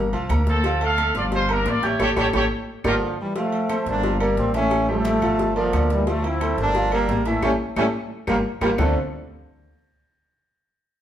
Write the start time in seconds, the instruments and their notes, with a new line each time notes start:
Already playing: upright bass G1
0.13 upright bass C2, grand piano F3 F4 F5, high conga, low agogo
0.29 upright bass D2, grand piano A#3 A#4 A#5, cowbell, high conga, low agogo, claves
0.47 trumpet section C4 A4, cowbell, high conga
0.64 grand piano F3 F4 F5, cowbell, high conga, low agogo
0.81 grand piano A3 A4 A5, trumpet section A4 F5, high conga, low agogo
0.98 cowbell, high conga, low agogo, claves
1.14 upright bass G1, grand piano F3 F4 F5, trumpet section F4 D5, cowbell, high conga
1.32 trumpet section F4 C5, cowbell, high conga, low agogo
1.49 grand piano A#3 A#4 A#5, trumpet section D4 A#4, high conga, low agogo, claves
1.65 upright bass A1, trumpet section F4 D5, cowbell, high conga, low timbale
1.83 trumpet section E4 C#5, grand piano G4 G5 G6, cowbell, high conga, low agogo
1.99 upright bass A1, grand piano G4 A4 C#5, trumpet section G4 A4 C#5, cowbell, high conga, high timbale, claves
2.16 upright bass A1, grand piano G4 A4 C#5, trumpet section G4 A4 C#5, cowbell, high conga, high timbale, claves
2.33 upright bass A1, grand piano G4 A4 C#5, trumpet section G4 A4 C#5, cowbell, high conga, high timbale, claves
2.84 upright bass G1, trombone section D3 F3, trumpet section F4 G4 A#4, grand piano G4 A#4 D5, cowbell, high conga, high timbale, claves
3.19 trombone section E3 G3
3.36 grand piano F3 F4 F5, trombone section F3 A3, cowbell, high conga, low agogo
3.52 high conga, low agogo
3.69 grand piano A3 A4 C5, cowbell, high conga, low agogo, claves
3.86 upright bass G1, trombone section A#3 D4, cowbell, high conga
4.03 grand piano F3 F4 F5, cowbell, high conga, low agogo
4.20 trombone section G3 A#3, grand piano A#3 A#4 D5, high conga, low agogo, claves
4.37 upright bass A1, trombone section G3 C4, cowbell, high conga
4.54 grand piano E3 E4 E5, trombone section A3 C#4, cowbell, high conga, low agogo
4.71 cowbell, low agogo, claves
4.88 trombone section F3 A3, grand piano G3 G4 A4, high conga
5.05 cowbell, high conga, low agogo
5.22 upright bass G1, grand piano F3 F4 F5, high conga, low conga, low agogo, claves
5.39 cowbell, high conga, low conga
5.56 trombone section D3 F3, grand piano A#3 A#4 D5, high conga, low agogo
5.73 upright bass D2, grand piano A#3 A#4 D5, cowbell, high conga, low timbale, low agogo, claves
5.90 trombone section E3 G3, cowbell, high conga
6.07 grand piano F3 F4 F5, trombone section F3 A3, cowbell, high conga, low agogo
6.24 trombone section C4 E4, high conga, low agogo
6.41 grand piano A3 A4 C5, cowbell, high conga, low agogo, claves
6.58 upright bass G1, trombone section A#3 D4, cowbell, high conga
6.75 grand piano F3 F4 F5, cowbell, high conga, low agogo
6.92 trombone section G3 A#3, grand piano A#3 A#4 D5, high conga, low agogo, claves
7.08 upright bass A1, cowbell, high conga, low timbale
7.25 grand piano E3 E4 E5, trombone section E3 A3, cowbell, high conga, low agogo
7.42 upright bass A1, trombone section G3 A3 C#4, grand piano E4 G4 A4, cowbell, high conga, high timbale, claves
7.76 upright bass A1, trombone section G3 A3 C#4, grand piano E4 G4 A4, cowbell, high conga, high timbale, claves
8.27 upright bass G1, trombone section F3 G3 A#3, grand piano F4 G4 A#4, cowbell, high conga, high timbale, claves
8.61 upright bass G1, trombone section F3 G3 A#3, grand piano F4 G4 A#4, cowbell, high conga, high timbale, claves
8.78 upright bass D2, grand piano D3 A3 C4 D4 F4 A4, trombone section D4, low bongo, low conga, low timbale, claves